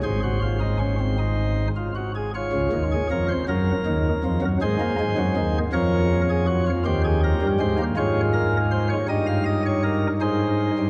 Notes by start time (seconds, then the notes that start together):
0.04 G#1 G#2 G#4 C5
0.23 F#4
0.42 F4
0.61 D#4
0.79 C#4
1.00 C4
1.18 D#4
1.76 F4
1.95 F#4
2.15 G#4
2.35 F4 C#5
2.52 C#2 C#3
2.73 D#2 D#3
2.92 G#4
3.11 F2 F3 A#4
3.29 C5
3.48 F#2 F#3 A#4
3.86 D#2 D#3
4.24 F2 F3
4.42 F#2 F#3
4.62 G#2 G#3 G#4 C5
4.80 A#3
5.00 G#2 G#3
5.18 F#2 F#3
5.37 D#2 D#3
5.73 F2 F3 A#4 C#5
6.30 G#4
6.47 F#4
6.67 F4
6.85 D#2 D#3 G4 C5
7.04 G#4
7.24 A#4
7.42 G2 G3
7.60 G#2 G#3 C5
7.78 A#3
7.97 G#2 G#3 F4 C#5
8.33 A#4
8.71 C5
8.89 C#5
9.09 G2 G3 D#4 D#5
9.27 F5
9.46 D#5
9.66 C#5
9.83 A#4
10.21 G#2 G#3 D#4 C5
10.79 G2 G3